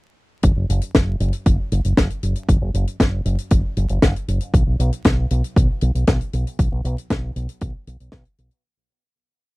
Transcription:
0.43 0.53 F#1 medium
0.43 kick loud
0.43 closed hi-hat medium
0.56 0.66 F#1 medium
0.69 0.79 F#1 medium
0.69 closed hi-hat medium
0.81 closed hi-hat medium
0.95 1.15 F#1 medium
0.95 kick loud
0.95 snare loud
0.95 closed hi-hat medium
1.20 1.30 F#1 loud
1.20 closed hi-hat medium
1.33 closed hi-hat medium
1.46 1.56 F#1 medium
1.46 kick loud
1.46 closed hi-hat medium
1.72 1.82 F#1 loud
1.72 closed hi-hat medium
1.84 1.94 F#1 medium
1.84 closed hi-hat medium
1.97 2.07 F#1 medium
1.97 kick loud
1.97 snare loud
1.97 closed hi-hat medium
2.10 closed hi-hat soft
2.23 2.33 F#1 medium
2.23 closed hi-hat medium
2.35 closed hi-hat medium
2.49 2.59 F#1 loud
2.49 kick loud
2.49 closed hi-hat medium
2.61 2.71 F#1 medium
2.74 2.84 F#1 medium
2.74 closed hi-hat medium
2.87 closed hi-hat medium
3.00 3.20 F#1 medium
3.00 kick loud
3.00 snare loud
3.00 closed hi-hat medium
3.25 3.35 F#1 loud
3.25 closed hi-hat medium
3.38 closed hi-hat medium
3.50 3.61 F#1 medium
3.50 kick loud
3.50 closed hi-hat medium
3.77 3.87 F#1 loud
3.77 closed hi-hat medium
3.89 4.00 F#1 medium
3.89 closed hi-hat medium
4.02 4.12 F#1 loud
4.02 kick loud
4.02 snare loud
4.02 closed hi-hat medium
4.16 closed hi-hat soft
4.28 4.38 F#1 medium
4.28 closed hi-hat medium
4.41 closed hi-hat medium
4.54 4.64 B1 loud
4.54 kick loud
4.54 closed hi-hat medium
4.67 4.76 B1 medium
4.79 4.89 B1 medium
4.79 closed hi-hat medium
4.92 closed hi-hat medium
5.04 5.25 B1 medium
5.04 kick loud
5.04 snare loud
5.04 closed hi-hat medium
5.30 5.41 B1 loud
5.30 closed hi-hat medium
5.44 closed hi-hat medium
5.56 5.66 B1 medium
5.56 kick loud
5.56 closed hi-hat medium
5.81 5.92 B1 loud
5.81 closed hi-hat medium
5.95 6.05 B1 medium
5.95 closed hi-hat medium
6.07 6.18 B1 medium
6.07 kick loud
6.07 snare loud
6.07 closed hi-hat medium
6.21 closed hi-hat medium
6.33 6.43 B1 medium
6.33 closed hi-hat medium
6.47 closed hi-hat medium
6.59 6.69 B1 loud
6.59 kick loud
6.59 closed hi-hat medium
6.72 6.82 B1 medium
6.84 6.94 B1 medium
6.84 closed hi-hat medium
6.98 closed hi-hat medium
7.10 7.30 B1 medium
7.10 kick loud
7.10 snare loud
7.10 closed hi-hat medium
7.36 7.46 B1 loud
7.36 closed hi-hat medium
7.49 closed hi-hat medium
7.61 7.71 B1 medium
7.61 kick loud
7.61 closed hi-hat medium
7.87 7.97 B1 loud
7.87 closed hi-hat medium
8.00 8.10 B1 medium
8.00 closed hi-hat medium
8.12 8.23 B1 loud
8.12 kick loud
8.12 snare loud
8.12 closed hi-hat medium
8.25 closed hi-hat medium
8.38 8.48 B1 medium
8.38 closed hi-hat medium
8.51 closed hi-hat medium

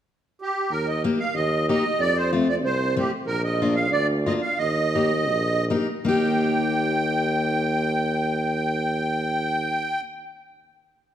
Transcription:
0.41 0.72 G4 medium
0.70 1.12 D#2 medium
0.70 0.88 A#4 medium
0.88 1.02 D#5 medium
1.04 1.19 A#3 medium
1.04 1.18 D#4 soft
1.04 1.18 G4 medium
1.19 1.35 F5 medium
1.35 1.77 D#2 medium
1.35 1.67 D#5 medium
1.69 1.83 A#3 soft
1.69 1.83 D#4 soft
1.69 1.83 G4 medium
1.69 2.01 D#5 medium
2.00 2.66 F2 medium
2.00 2.17 D5 medium
2.17 2.31 C5 medium
2.33 2.47 A3 soft
2.33 2.47 C4 soft
2.33 2.47 F4 medium
2.49 2.56 D5 medium
2.64 3.05 C2 medium
2.64 2.95 C5 medium
2.96 3.10 A3 medium
2.96 3.11 C4 medium
2.96 3.10 F4 medium
2.96 3.11 G4 medium
3.27 3.93 A#1 medium
3.27 3.42 A#4 medium
3.44 3.74 D#5 medium
3.62 3.75 A#3 soft
3.62 3.75 D4 soft
3.62 3.75 F4 medium
3.75 3.91 F5 medium
3.92 4.35 D2 loud
3.92 4.07 D5 medium
4.26 4.41 A#3 soft
4.26 4.41 D4 soft
4.26 4.41 F4 medium
4.26 4.33 D#5 medium
4.42 4.58 F5 medium
4.58 5.31 D#2 medium
4.58 5.65 D#5 medium
4.95 5.10 A#3 medium
4.95 5.10 D#4 soft
4.95 5.11 G4 soft
5.30 5.80 A#1 medium
5.70 5.86 A#3 medium
5.70 5.87 D#4 medium
5.70 5.87 G4 medium
6.05 10.01 D#2 medium
6.05 9.98 A#3 medium
6.05 10.00 D#4 medium
6.05 10.02 G4 medium
6.05 10.01 G5 medium

